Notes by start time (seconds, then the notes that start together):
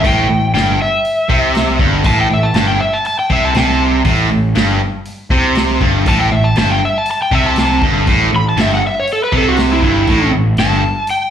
0.03 A1 A2 G5, kick, open hi-hat
0.29 A1 A2
0.54 G1 G2 G5, snare, open hi-hat
0.82 E5
1.05 open hi-hat
1.29 C2 C3, kick
1.55 snare, open hi-hat
1.79 G1 G2, kick
2.04 A1 A2 A5, kick, open hi-hat
2.21 G5
2.29 A1 A2
2.33 E5
2.43 A5
2.54 G1 G2 A5, snare, open hi-hat
2.68 G5
2.80 E5
2.93 A5
3.05 A5, open hi-hat
3.19 G5
3.30 C2 C3 E5, kick
3.45 A5
3.54 C2 C3, snare, open hi-hat
3.59 A5
4.05 A1 A2, kick, open hi-hat
4.30 A1 A2
4.55 G1 G2, snare, open hi-hat
5.05 open hi-hat
5.30 C2 C3, kick
5.55 snare, open hi-hat
5.81 G1 G2, kick
6.06 A1 A2 A5, kick, open hi-hat
6.21 G5
6.31 A1 A2 E5
6.44 A5
6.56 G1 G2 A5, snare, open hi-hat
6.72 G5
6.85 E5
6.98 A5
7.06 open hi-hat
7.11 A5
7.22 G5
7.31 C2 C3 E5, kick
7.46 A5
7.56 A5, snare, open hi-hat
7.82 G1 G2, kick
8.07 A1 A2, kick, open hi-hat
8.32 A1 A2 B5
8.49 A5
8.57 G1 G2, snare, open hi-hat
8.61 E5
8.74 F#5
8.87 E5
9.00 C#5
9.07 open hi-hat
9.13 A4
9.24 B4
9.32 C2 C3, kick
9.37 A4
9.48 F#4
9.57 snare, open hi-hat
9.73 E4
9.82 G1 G2 E4, kick
10.07 A1 A2, kick, open hi-hat
10.33 A1 A2
10.57 G1 G2 A5, snare, open hi-hat
11.07 G5, open hi-hat